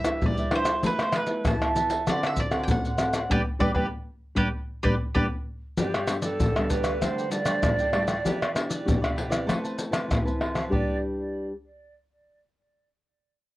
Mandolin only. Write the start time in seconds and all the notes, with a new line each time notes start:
Already playing: E5
0.26 D5
0.56 C5
0.87 B4
1.03 C5
1.16 B4
1.47 A5
2.09 D5
2.27 E5
2.40 D5
2.64 G5
2.71 F#5
3.31 G4 B4 D5
3.60 G4 B4 D5
3.75 G4 B4 D5
4.36 G4 B4 D5
4.83 G4 B4 D5
5.14 G4 B4 D5